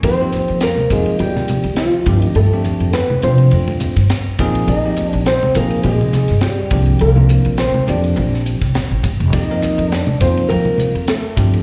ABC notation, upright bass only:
X:1
M:4/4
L:1/16
Q:"Swing 16ths" 1/4=103
K:Cm
V:1 name="Upright bass" clef=bass
F,, z2 F,,2 z F,, z F, z2 D,,2 z G,,2 | G,,3 F,,2 z C,2 F,,3 G,,2 z B,,,2 | B,,, z2 B,,,2 z B,,, z B,, z2 G,,2 z C,,2 | C,,3 B,,,2 z F,,2 B,,,3 C,, B,,, =A,,, G,,, F,,, |
F,, z2 F,,2 z F,, z F, z2 F,,2 z G,,2 |]